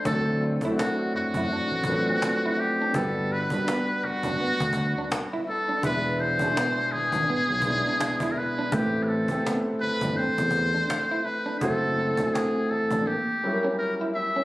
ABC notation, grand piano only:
X:1
M:4/4
L:1/16
Q:"Swing 16ths" 1/4=83
K:Em
V:1 name="Grand piano"
[F,A,CDA]3 [F,A,CDEF]6- [F,A,CDEF] [=F,^F,A,CDB]6 | [G,B,DFB]3 [G,B,DFB]6- [G,B,DFB] z6 | [^G,B,DEB]3 [B,,G,DE^G]6- [B,,G,DEG] [G,B,DEd]6 | [A,CEGB]3 [A,CEGA]6- [A,CEGA] z6 |
[A,CEFc]3 [A,CEF^g]4- [A,CEFg] z2 [F,=G,^CEG^A]6 |]